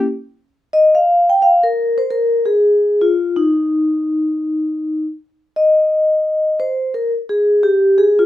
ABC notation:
X:1
M:4/4
L:1/16
Q:"Swing 16ths" 1/4=87
K:Ebmix
V:1 name="Vibraphone"
z4 e f2 g f B2 c B2 A2- | A F2 E8- E2 z3 | e6 c2 B2 A2 G2 A F |]